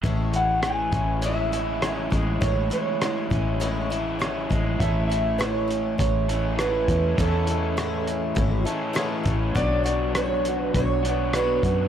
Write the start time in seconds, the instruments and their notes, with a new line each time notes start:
0.03 fingered electric bass A1, twelve-string acoustic guitar A2 E3 G#3 C#4 E4, kick, closed hi-hat
0.33 overdriven electric guitar E3, twelve-string acoustic guitar G#3 C#4 E4, electric slide guitar F#5, closed hi-hat
0.63 twelve-string acoustic guitar E3 G#3 C#4 E4, electric slide guitar G#5, cross-stick, closed hi-hat
0.92 fingered electric bass A1, twelve-string acoustic guitar G#3 C#4 E4, kick, closed hi-hat
1.22 twelve-string acoustic guitar A2 E3 G#3 C#4 E4, closed hi-hat
1.26 electric slide guitar E5
1.52 twelve-string acoustic guitar C#4 E4, closed hi-hat
1.56 twelve-string acoustic guitar G#3
1.82 twelve-string acoustic guitar E3 G#3 C#4 E4, cross-stick, closed hi-hat
2.10 fingered electric bass A1, twelve-string acoustic guitar G#3 C#4 E4, kick, closed hi-hat
2.41 fingered electric bass A1, twelve-string acoustic guitar A2 E3 G#3 C#4 E4, electric slide guitar C#5, kick, closed hi-hat
2.70 overdriven electric guitar E3, twelve-string acoustic guitar G#3 C#4 E4, electric slide guitar C#5, closed hi-hat
3.01 twelve-string acoustic guitar E3 G#3 C#4 E4, cross-stick, closed hi-hat
3.30 fingered electric bass A1, twelve-string acoustic guitar G#3 C#4 E4, kick, closed hi-hat
3.60 twelve-string acoustic guitar A2 E3 G#3 C#4 E4, closed hi-hat
3.90 twelve-string acoustic guitar G#3 C#4 E4, closed hi-hat
4.19 twelve-string acoustic guitar E3 G#3 C#4 E4, cross-stick, closed hi-hat
4.50 fingered electric bass A1, twelve-string acoustic guitar G#3 C#4 E4, kick, closed hi-hat
4.80 fingered electric bass A1, twelve-string acoustic guitar A2 E3 G#3 C#4 E4, overdriven electric guitar A3 A4, electric slide guitar E5, kick, closed hi-hat
5.08 twelve-string acoustic guitar C#4 E4, electric slide guitar E5, closed hi-hat
5.13 twelve-string acoustic guitar G#3
5.38 twelve-string acoustic guitar A2 E3 G#3 C#4 E4, electric slide guitar C#5, cross-stick, closed hi-hat
5.68 twelve-string acoustic guitar C#4 E4, closed hi-hat
5.72 twelve-string acoustic guitar G#3
5.98 fingered electric bass A1, twelve-string acoustic guitar E3 G#3 C#4 E4, electric slide guitar C#5, kick, closed hi-hat
6.29 overdriven electric guitar A2 E3 A3 A4, twelve-string acoustic guitar G#3 C#4 E4, closed hi-hat
6.58 twelve-string acoustic guitar A2 E3 G#3 C#4 E4, overdriven electric guitar A3 A4, electric slide guitar B4, cross-stick, closed hi-hat
6.88 fingered electric bass E2, twelve-string acoustic guitar C#4 E4, kick, closed hi-hat
6.92 twelve-string acoustic guitar G#3
7.17 fingered electric bass E2, twelve-string acoustic guitar A2 E3 G#3 C#4 E4, overdriven electric guitar A3 A4, electric slide guitar A4, kick, closed hi-hat
7.47 twelve-string acoustic guitar G#3 C#4 E4, electric slide guitar A4, closed hi-hat
7.77 twelve-string acoustic guitar A2 E3 G#3 C#4 E4, cross-stick, closed hi-hat
8.07 twelve-string acoustic guitar G#3 C#4 E4, closed hi-hat
8.35 fingered electric bass G#1, twelve-string acoustic guitar E3 G#3 C#4 E4, kick, closed hi-hat
8.65 overdriven electric guitar A2 E3 A3 A4, twelve-string acoustic guitar G#3 C#4 E4, closed hi-hat
8.93 twelve-string acoustic guitar A2 E3 G#3 C#4 E4, overdriven electric guitar A3, cross-stick, closed hi-hat
8.98 overdriven electric guitar A4
9.23 fingered electric bass A1, twelve-string acoustic guitar G#3 C#4 E4, kick, closed hi-hat
9.55 fingered electric bass B1, twelve-string acoustic guitar B2 F#3 B3 D4 F#4 C#5, electric slide guitar D5, kick, closed hi-hat
9.84 twelve-string acoustic guitar B3 D4 F#4 C#5, electric slide guitar D5, closed hi-hat
10.15 twelve-string acoustic guitar B2 F#3 B3 D4 F#4 C#5, electric slide guitar C#5, cross-stick, closed hi-hat
10.45 twelve-string acoustic guitar B3 D4 F#4 C#5, closed hi-hat
10.63 electric slide guitar B4
10.74 fingered electric bass B1, twelve-string acoustic guitar B3 D4 F#4, electric slide guitar C#5, kick, closed hi-hat
10.80 twelve-string acoustic guitar C#5
11.03 overdriven electric guitar B2 F#3 B3 D4 F#4, twelve-string acoustic guitar C#5, closed hi-hat
11.08 twelve-string acoustic guitar B3 D4 F#4
11.33 twelve-string acoustic guitar B2 F#3 B3 D4 F#4, electric slide guitar B4, cross-stick, closed hi-hat
11.38 twelve-string acoustic guitar C#5
11.63 fingered electric bass F#2, twelve-string acoustic guitar B3 D4 F#4 C#5, kick, closed hi-hat